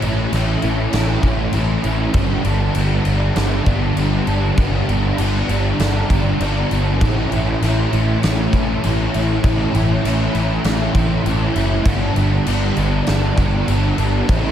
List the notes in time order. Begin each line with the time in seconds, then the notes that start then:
Already playing: A2 E3
0.00 A1 A3 C#4 E4, crash
0.32 A1 E3 A3 C#4 E4, snare, crash
0.62 A1 A3 C#4 E4, crash
0.93 A1 A2 E3 A3 C#4 E4, snare, crash
1.22 A1 A3 C#4 E4, kick, crash
1.52 A1 E3 A3 C#4 E4, crash
1.83 A1 A3 C#4 E4, crash
2.14 G1 G2 D3 G3 B3 D4, kick, crash
2.44 G1 G3 B3 D4, crash
2.75 G1 D3 G3 B3 D4, crash
3.05 G1 G3 B3 D4, crash
3.36 G1 G2 D3 G3 B3 D4, snare, crash
3.66 G1 G3 B3 D4, kick, crash
3.96 G1 D3 G3 B3 D4, crash
4.27 G1 G3 B3 D4, crash
4.57 G1 G2 D3 G3 B3 D4, kick, crash
4.88 G1 G3 B3 D4, crash
5.18 G1 D3 G3 B3 D4, crash
5.48 G1 G3 B3 D4, crash
5.79 G1 G2 D3 G3 B3 D4, snare, crash
6.10 G1 G3 B3 D4, kick, crash
6.40 G1 D3 G3 B3 D4, crash
6.70 G1 G3 B3 D4, crash
7.01 A1 A2 E3 A3 C#4 E4, kick, crash
7.31 A1 A3 C#4 E4, crash
7.62 A1 E3 A3 C#4 E4, snare, crash
7.92 A1 A3 C#4 E4, crash
8.22 A1 A2 E3 A3 C#4 E4, snare, crash
8.53 A1 A3 C#4 E4, kick, crash
8.83 A1 E3 A3 C#4 E4, crash
9.13 A1 A3 C#4 E4, crash
9.42 A1 A2 E3 A3 C#4 E4, kick, crash
9.72 A1 A3 C#4 E4, crash
10.02 A1 E3 A3 C#4 E4, snare, crash
10.35 A1 A3 C#4 E4, crash
10.64 A1 A2 E3 A3 C#4 E4, snare, crash
10.94 A1 A3 C#4 E4, kick, crash
11.25 A1 E3 A3 C#4 E4, crash
11.55 F#1 A3 C#4 E4, crash
11.85 G1 G2 D3 G3 B3 D4, kick, crash
12.16 G1 G3 B3 D4, crash
12.46 G1 D3 G3 B3 D4, snare, crash
12.77 G1 G3 B3 D4, crash
13.06 G1 G2 D3 G3 B3 D4, snare, crash
13.36 G1 G3 B3 D4, kick, crash
13.67 G1 D3 G3 B3 D4, crash
13.97 G1 G3 B3 D4, crash
14.28 A1 A2 E3 A3 C#4 E4, kick, crash